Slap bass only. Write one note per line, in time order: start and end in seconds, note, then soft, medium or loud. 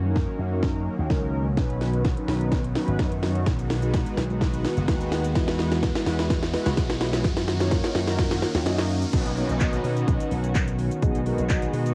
0.00 0.25 F#2 loud
0.39 0.87 F#2 medium
0.99 1.08 D#2 medium
1.10 1.57 C#2 medium
1.57 2.14 B1 loud
2.28 2.76 B1 medium
2.88 2.97 G#1 medium
2.99 3.48 F#2 medium
3.47 4.03 B1 loud
4.17 4.65 B1 medium
4.77 4.86 F#1 medium
4.88 5.35 D#2 medium
5.35 5.92 E2 loud
6.06 6.54 E2 medium
6.66 6.75 C#2 medium
6.77 7.26 B1 medium
7.24 7.81 F#2 loud
7.95 8.43 F#2 medium
8.55 8.64 D#2 medium
8.66 9.04 F#2 medium
9.13 9.42 B1 loud
9.49 9.77 B1 medium
9.84 10.03 B2 medium
10.08 10.18 B1 medium
10.31 10.88 B1 loud
11.02 11.31 B1 loud
11.38 11.66 B1 medium
11.73 11.92 B2 medium